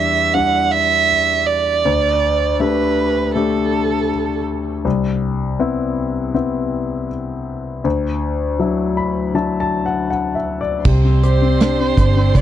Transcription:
Already playing: grand piano E2 G3 D4 E4, violin E5
0.34 grand piano G3 D4 E4, violin F#5
0.72 violin E5
1.46 violin D5
1.85 grand piano D2
2.60 grand piano A3 D4 G4, violin B4
3.35 grand piano A3 D4 G4, violin A4
4.85 grand piano C2
5.59 grand piano B3 C4 E4
6.34 grand piano B3 C4 E4
7.84 grand piano D2
8.59 grand piano F#3 D4 E4
8.97 grand piano B5
9.35 grand piano F#3 D4 E4 A5
9.60 grand piano A5
9.86 grand piano F#5
10.10 grand piano F#5
10.35 grand piano E5
10.61 grand piano D5
10.85 fingered electric bass C2, grand piano C3, string section G4 C5 D5 C6, kick, crash
11.05 grand piano C4
11.23 grand piano G4, violin C5, closed hi-hat
11.42 grand piano C4
11.61 grand piano D4, snare, closed hi-hat
11.80 grand piano C4
11.97 fingered electric bass G1, grand piano D4, kick, closed hi-hat
12.17 grand piano C4
12.35 fingered electric bass C2, grand piano G3, violin D5, kick, closed hi-hat

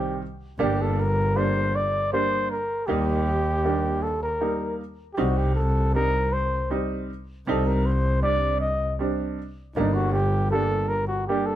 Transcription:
Already playing: upright piano D#3 G3 C4, cornet G4
0.59 double bass G1, upright piano G3 A#3 D4, cornet G4
0.82 cornet A4
1.00 cornet A#4
1.36 upright piano G3 A#3 D4, cornet C5
1.76 cornet D5
2.13 upright piano G3 A#3 D4, cornet C5
2.51 cornet A#4
2.87 double bass D#2, upright piano G3 A#3 D#4, cornet G4
3.64 upright piano G3 A#3 D4
4.03 cornet A4
4.23 cornet A#4
4.41 upright piano G3 A#3 D#4
5.14 upright piano G3, cornet G4
5.18 double bass C2, upright piano C4 D#4, cornet F#4
5.37 cornet G4
5.55 cornet A4
5.95 upright piano G3 C4 D#4, cornet A#4
6.33 cornet C5
6.70 upright piano G3 C4 D#4
7.47 double bass C2, upright piano G3 C4 D#4, cornet A4
7.67 cornet A#4
7.86 cornet C5
8.23 upright piano G3 C4 D4, cornet D5
8.61 cornet D#5
8.99 upright piano G3 C4 D4
9.76 double bass G1, upright piano G3 A#3 D4, cornet D#4
9.94 cornet F#4
10.13 cornet G4
10.51 upright piano G3 A#3 D4, cornet A4
10.89 cornet A#4
11.08 cornet F#4
11.27 upright piano G3 A#3 D4, cornet G4
11.46 cornet A4

